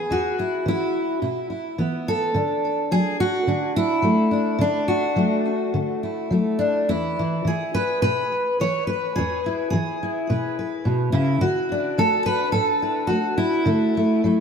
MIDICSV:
0, 0, Header, 1, 2, 480
1, 0, Start_track
1, 0, Tempo, 563380
1, 75, Time_signature, 4, 2, 24, 8
1, 4395, Tempo, 571429
1, 7755, Tempo, 564440
1, 12214, End_track
2, 0, Start_track
2, 0, Title_t, "Steel-string acoustic guitar"
2, 0, Program_c, 0, 25
2, 0, Note_on_c, 0, 68, 82
2, 90, Note_on_c, 0, 40, 73
2, 100, Note_on_c, 0, 66, 86
2, 320, Note_off_c, 0, 68, 0
2, 335, Note_on_c, 0, 64, 52
2, 517, Note_off_c, 0, 40, 0
2, 559, Note_on_c, 0, 52, 61
2, 579, Note_off_c, 0, 64, 0
2, 582, Note_on_c, 0, 64, 81
2, 992, Note_off_c, 0, 52, 0
2, 1028, Note_off_c, 0, 64, 0
2, 1037, Note_on_c, 0, 47, 62
2, 1040, Note_on_c, 0, 64, 48
2, 1051, Note_off_c, 0, 66, 0
2, 1274, Note_off_c, 0, 64, 0
2, 1277, Note_on_c, 0, 64, 42
2, 1472, Note_off_c, 0, 47, 0
2, 1519, Note_on_c, 0, 52, 58
2, 1524, Note_on_c, 0, 59, 50
2, 1771, Note_off_c, 0, 64, 0
2, 1774, Note_on_c, 0, 69, 98
2, 1952, Note_off_c, 0, 52, 0
2, 1997, Note_on_c, 0, 50, 73
2, 2001, Note_off_c, 0, 59, 0
2, 2006, Note_on_c, 0, 62, 48
2, 2428, Note_off_c, 0, 50, 0
2, 2482, Note_on_c, 0, 54, 60
2, 2483, Note_off_c, 0, 69, 0
2, 2487, Note_on_c, 0, 68, 109
2, 2721, Note_off_c, 0, 68, 0
2, 2728, Note_on_c, 0, 66, 98
2, 2909, Note_off_c, 0, 54, 0
2, 2956, Note_on_c, 0, 50, 62
2, 2961, Note_off_c, 0, 62, 0
2, 2965, Note_on_c, 0, 62, 43
2, 3198, Note_off_c, 0, 66, 0
2, 3207, Note_on_c, 0, 64, 95
2, 3385, Note_off_c, 0, 50, 0
2, 3426, Note_on_c, 0, 54, 61
2, 3433, Note_on_c, 0, 57, 44
2, 3662, Note_off_c, 0, 62, 0
2, 3673, Note_on_c, 0, 62, 47
2, 3861, Note_off_c, 0, 54, 0
2, 3884, Note_off_c, 0, 62, 0
2, 3907, Note_on_c, 0, 50, 79
2, 3930, Note_on_c, 0, 62, 90
2, 4154, Note_off_c, 0, 64, 0
2, 4157, Note_on_c, 0, 66, 76
2, 4342, Note_off_c, 0, 50, 0
2, 4391, Note_off_c, 0, 57, 0
2, 4394, Note_on_c, 0, 54, 57
2, 4401, Note_on_c, 0, 57, 47
2, 4641, Note_off_c, 0, 62, 0
2, 4824, Note_off_c, 0, 54, 0
2, 4882, Note_on_c, 0, 50, 62
2, 5115, Note_off_c, 0, 66, 0
2, 5128, Note_on_c, 0, 64, 45
2, 5311, Note_off_c, 0, 50, 0
2, 5358, Note_off_c, 0, 57, 0
2, 5358, Note_on_c, 0, 54, 57
2, 5370, Note_on_c, 0, 57, 44
2, 5595, Note_on_c, 0, 62, 77
2, 5791, Note_off_c, 0, 54, 0
2, 5837, Note_off_c, 0, 62, 0
2, 5845, Note_off_c, 0, 57, 0
2, 5846, Note_off_c, 0, 64, 0
2, 5846, Note_on_c, 0, 40, 64
2, 5850, Note_on_c, 0, 64, 83
2, 5854, Note_on_c, 0, 52, 52
2, 6100, Note_off_c, 0, 52, 0
2, 6104, Note_on_c, 0, 52, 48
2, 6274, Note_off_c, 0, 40, 0
2, 6313, Note_off_c, 0, 52, 0
2, 6317, Note_on_c, 0, 52, 57
2, 6340, Note_on_c, 0, 68, 88
2, 6563, Note_off_c, 0, 64, 0
2, 6567, Note_on_c, 0, 71, 95
2, 6748, Note_off_c, 0, 52, 0
2, 6789, Note_off_c, 0, 71, 0
2, 6799, Note_on_c, 0, 71, 102
2, 6806, Note_on_c, 0, 47, 60
2, 7047, Note_off_c, 0, 68, 0
2, 7232, Note_off_c, 0, 47, 0
2, 7277, Note_off_c, 0, 71, 0
2, 7293, Note_on_c, 0, 73, 97
2, 7297, Note_on_c, 0, 52, 62
2, 7510, Note_off_c, 0, 73, 0
2, 7513, Note_on_c, 0, 71, 83
2, 7717, Note_off_c, 0, 52, 0
2, 7753, Note_on_c, 0, 68, 95
2, 7777, Note_on_c, 0, 40, 81
2, 8011, Note_on_c, 0, 64, 47
2, 8198, Note_off_c, 0, 40, 0
2, 8208, Note_off_c, 0, 68, 0
2, 8218, Note_on_c, 0, 68, 91
2, 8234, Note_off_c, 0, 71, 0
2, 8243, Note_on_c, 0, 52, 59
2, 8490, Note_off_c, 0, 64, 0
2, 8494, Note_on_c, 0, 64, 41
2, 8670, Note_off_c, 0, 52, 0
2, 8722, Note_on_c, 0, 47, 64
2, 8725, Note_on_c, 0, 71, 51
2, 8959, Note_off_c, 0, 71, 0
2, 8970, Note_on_c, 0, 71, 48
2, 9148, Note_off_c, 0, 47, 0
2, 9184, Note_off_c, 0, 68, 0
2, 9194, Note_on_c, 0, 47, 60
2, 9422, Note_off_c, 0, 71, 0
2, 9426, Note_off_c, 0, 64, 0
2, 9426, Note_on_c, 0, 64, 83
2, 9429, Note_off_c, 0, 47, 0
2, 9432, Note_on_c, 0, 49, 66
2, 9668, Note_off_c, 0, 49, 0
2, 9668, Note_off_c, 0, 64, 0
2, 9670, Note_on_c, 0, 66, 91
2, 9671, Note_on_c, 0, 50, 72
2, 9931, Note_on_c, 0, 62, 51
2, 10101, Note_off_c, 0, 50, 0
2, 10155, Note_on_c, 0, 57, 69
2, 10161, Note_on_c, 0, 69, 106
2, 10388, Note_off_c, 0, 69, 0
2, 10392, Note_on_c, 0, 71, 109
2, 10580, Note_off_c, 0, 57, 0
2, 10611, Note_off_c, 0, 71, 0
2, 10615, Note_on_c, 0, 69, 98
2, 10623, Note_off_c, 0, 66, 0
2, 10629, Note_on_c, 0, 45, 64
2, 10871, Note_on_c, 0, 64, 44
2, 11059, Note_off_c, 0, 45, 0
2, 11079, Note_off_c, 0, 64, 0
2, 11082, Note_on_c, 0, 66, 86
2, 11111, Note_on_c, 0, 57, 60
2, 11338, Note_off_c, 0, 69, 0
2, 11341, Note_on_c, 0, 64, 90
2, 11545, Note_off_c, 0, 57, 0
2, 11572, Note_off_c, 0, 62, 0
2, 11578, Note_on_c, 0, 50, 77
2, 11587, Note_on_c, 0, 57, 51
2, 11820, Note_off_c, 0, 66, 0
2, 11830, Note_off_c, 0, 57, 0
2, 11847, Note_on_c, 0, 57, 50
2, 12019, Note_off_c, 0, 50, 0
2, 12073, Note_off_c, 0, 57, 0
2, 12075, Note_on_c, 0, 54, 62
2, 12084, Note_on_c, 0, 57, 47
2, 12214, Note_off_c, 0, 54, 0
2, 12214, Note_off_c, 0, 57, 0
2, 12214, Note_off_c, 0, 64, 0
2, 12214, End_track
0, 0, End_of_file